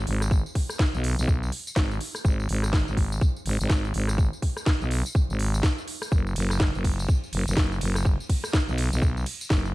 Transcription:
0.07 fm bass G#1, open hi-hat
0.21 cross-stick, tambourine
0.31 kick, tambourine
0.46 tambourine
0.55 kick, open hi-hat
0.70 cross-stick, tambourine
0.79 kick, snare, tambourine
0.94 fm bass B1, tambourine
1.04 open hi-hat
1.18 fm bass B1, tambourine
1.28 kick, tambourine
1.43 tambourine
1.52 open hi-hat
1.67 tambourine
1.76 fm bass G#1, kick, snare, tambourine
1.91 tambourine
2.01 open hi-hat
2.15 cross-stick, tambourine
2.25 fm bass G#1, kick, tambourine
2.40 tambourine
2.49 fm bass G#1, open hi-hat
2.63 cross-stick, tambourine
2.73 kick, snare, tambourine
2.87 fm bass G#1, tambourine
2.97 kick, open hi-hat
3.12 tambourine
3.21 kick, tambourine
3.36 tambourine
3.46 fm bass G#1, open hi-hat
3.60 fm bass G#1, tambourine
3.70 kick, snare, tambourine
3.85 tambourine
3.94 fm bass G#1, open hi-hat
4.08 cross-stick, tambourine
4.18 kick, tambourine
4.33 tambourine
4.42 kick, open hi-hat
4.57 cross-stick, tambourine
4.66 kick, snare, tambourine
4.81 fm bass B1, tambourine
4.91 open hi-hat
5.06 tambourine
5.15 kick, tambourine
5.29 fm bass G#1, tambourine
5.39 open hi-hat
5.54 tambourine
5.63 kick, snare, tambourine
5.78 tambourine
5.88 open hi-hat
6.02 cross-stick, tambourine
6.12 fm bass F#1, kick, tambourine
6.27 tambourine
6.36 fm bass F#1, open hi-hat, ride
6.50 cross-stick, tambourine
6.60 kick, snare, tambourine
6.74 fm bass F#1, tambourine
6.84 kick, open hi-hat, ride
6.99 tambourine
7.09 kick, tambourine
7.24 tambourine
7.33 fm bass F#1, open hi-hat, ride
7.47 fm bass F#1, tambourine
7.57 fm bass F#1, kick, snare, tambourine
7.72 tambourine
7.81 fm bass F#1, open hi-hat, ride
7.95 cross-stick, tambourine
8.05 kick, tambourine
8.20 tambourine
8.30 kick, open hi-hat, ride
8.44 cross-stick, tambourine
8.53 kick, snare, tambourine
8.68 fm bass B1, tambourine
8.78 open hi-hat, ride
8.92 fm bass B1, tambourine
9.02 kick, tambourine
9.17 tambourine
9.26 open hi-hat, ride
9.41 tambourine
9.50 fm bass F#1, kick, snare, tambourine
9.65 tambourine

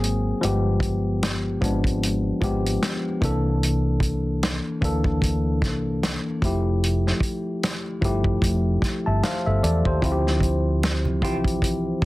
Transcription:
Already playing: fingered electric bass G#1, tine electric piano F#3 A#3 C4 G#4
0.04 closed hi-hat
0.41 fingered electric bass G1, tine electric piano F3 G#3 B3 G4, closed hi-hat
0.80 kick, closed hi-hat
1.23 snare, closed hi-hat
1.61 fingered electric bass G#1, tine electric piano F3 G#3 B3 D4, kick, closed hi-hat
1.84 kick, closed hi-hat
2.03 closed hi-hat
2.41 fingered electric bass G#1, tine electric piano F3 G#3 B3 G4, kick, closed hi-hat
2.66 closed hi-hat
2.83 snare, closed hi-hat
3.21 fingered electric bass C2, tine electric piano E3 A#3 D4 A4, kick, closed hi-hat
3.63 closed hi-hat
4.00 kick, closed hi-hat
4.43 snare, closed hi-hat
4.81 fingered electric bass D2, tine electric piano E3 A#3 D4 A4, kick, closed hi-hat
5.04 kick
5.22 kick, closed hi-hat
5.62 fingered electric bass C2, kick, snare, closed hi-hat
6.03 snare, closed hi-hat
6.42 fingered electric bass F1, tine electric piano F3 A3 E4 G4, kick, closed hi-hat
6.84 closed hi-hat
7.07 snare
7.20 kick, closed hi-hat
7.63 snare, closed hi-hat
8.01 fingered electric bass G1, tine electric piano F3 A3 E4 G4, kick, closed hi-hat
8.24 kick
8.42 fingered electric bass F1, kick, closed hi-hat
8.82 muted fingered electric bass stroke, kick, snare, closed hi-hat
9.06 fingered electric bass G1, tine electric piano E5 A5
9.23 tine electric piano C5 F5, snare, closed hi-hat
9.46 fingered electric bass G1, tine electric piano A4 E5
9.63 fingered electric bass E2, tine electric piano A4 D5, closed hi-hat
9.85 fingered electric bass D#2, tine electric piano G4 C5, kick
10.02 fingered electric bass D2, tine electric piano F3 C4 E4 F4, kick, closed hi-hat
10.12 tine electric piano G4
10.27 snare
10.40 kick, closed hi-hat, muted conga
10.83 snare, closed hi-hat
11.05 high conga, low conga
11.22 fingered electric bass C2, tine electric piano E3 C4 E4 G4, clean electric guitar F4 G4 C5, kick, closed hi-hat
11.28 tine electric piano F3
11.45 kick, closed hi-hat, high conga
11.62 kick, closed hi-hat, muted conga
12.02 muted conga

